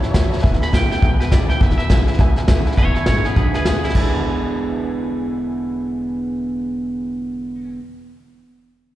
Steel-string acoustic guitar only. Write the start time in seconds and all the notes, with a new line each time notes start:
Already playing: E2
0.14 E3 C#4 E4
0.45 E2
0.72 D3 G#3 B3 E4
0.89 B3 E4
1.03 B2
1.31 D3 G#3 B3 E4
1.49 B3 E4
1.60 E2
1.90 D3 G#3 B3 E4
2.08 B3 E4
2.20 B2
2.48 D3 G#3 B3 E4
2.67 B3 E4
2.78 E2
3.08 D3 G#3 B3 E4
3.24 B3 E4
3.36 B2
3.65 D3 G#3 B3 E4
3.83 B3 E4
3.94 E2 B2 D3 G#3 B3 E4